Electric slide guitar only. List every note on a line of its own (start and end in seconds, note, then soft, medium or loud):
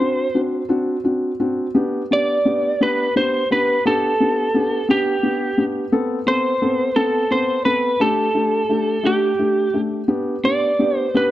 0.00 0.40 C5 medium
2.13 2.84 D5 medium
2.83 3.14 B4 medium
3.17 3.49 C5 medium
3.52 3.86 B4 medium
3.87 4.90 A4 medium
4.91 5.64 G4 medium
6.28 6.99 C5 loud
6.96 7.32 A4 medium
7.32 7.63 C5 medium
7.65 8.01 B4 medium
8.01 9.08 A4 medium
9.07 9.80 G4 medium
10.45 10.99 D5 medium
10.99 11.17 C5 medium
11.17 11.31 B4 medium